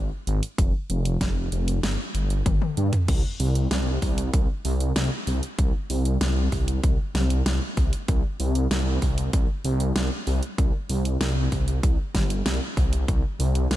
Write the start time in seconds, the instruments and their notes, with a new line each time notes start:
0.27 detuned saw bass G#1, closed hi-hat
0.43 closed hi-hat
0.58 detuned saw bass F1, kick, closed hi-hat
0.90 detuned saw bass F1, closed hi-hat
1.05 closed hi-hat
1.21 detuned saw bass F1, kick, snare, closed hi-hat
1.52 detuned saw bass F1, closed hi-hat
1.68 closed hi-hat
1.83 detuned saw bass G1, snare, closed hi-hat
2.15 detuned saw bass G1, closed hi-hat
2.30 closed hi-hat
2.46 detuned saw bass G1, kick, closed hi-hat, high tom
2.62 high tom
2.77 detuned saw bass G2, closed hi-hat
2.93 closed hi-hat, mid tom
3.08 detuned saw bass C2, kick, closed hi-hat, crash
3.40 detuned saw bass C2, open hi-hat
3.55 closed hi-hat
3.71 detuned saw bass C2, snare, closed hi-hat
4.02 detuned saw bass C2, kick, open hi-hat
4.18 closed hi-hat
4.34 detuned saw bass C2, kick, closed hi-hat
4.65 detuned saw bass C2, open hi-hat
4.80 closed hi-hat
4.96 detuned saw bass C2, snare, closed hi-hat
5.27 detuned saw bass C2, open hi-hat
5.43 closed hi-hat
5.59 detuned saw bass C2, kick, closed hi-hat
5.90 detuned saw bass C2, open hi-hat
6.05 closed hi-hat
6.21 detuned saw bass C2, snare, closed hi-hat
6.52 detuned saw bass C2, kick, open hi-hat
6.68 closed hi-hat
6.83 detuned saw bass C2, kick, closed hi-hat
7.15 detuned saw bass C2, snare, open hi-hat
7.30 closed hi-hat
7.46 detuned saw bass C2, snare, closed hi-hat
7.77 detuned saw bass C2, kick, open hi-hat
7.93 closed hi-hat
8.08 detuned saw bass C2, kick, closed hi-hat
8.40 detuned saw bass C2, open hi-hat
8.55 closed hi-hat
8.71 detuned saw bass C2, snare, closed hi-hat
9.02 detuned saw bass C2, kick, open hi-hat
9.18 closed hi-hat
9.33 detuned saw bass C2, kick, closed hi-hat
9.64 detuned saw bass C2, open hi-hat
9.80 closed hi-hat
9.96 detuned saw bass C2, snare, closed hi-hat
10.27 detuned saw bass C2, open hi-hat
10.43 closed hi-hat
10.58 detuned saw bass C2, kick, closed hi-hat
10.89 detuned saw bass C2, open hi-hat
11.05 closed hi-hat
11.21 detuned saw bass C2, snare, closed hi-hat
11.52 detuned saw bass C2, kick, open hi-hat
11.68 closed hi-hat
11.83 detuned saw bass C2, kick, closed hi-hat
12.15 detuned saw bass G1, kick, snare, open hi-hat
12.30 closed hi-hat
12.46 detuned saw bass C2, snare, closed hi-hat
12.77 detuned saw bass C2, kick, open hi-hat
12.93 closed hi-hat
13.08 detuned saw bass C2, kick, closed hi-hat
13.39 detuned saw bass C2, open hi-hat
13.55 closed hi-hat
13.71 detuned saw bass C2, snare, closed hi-hat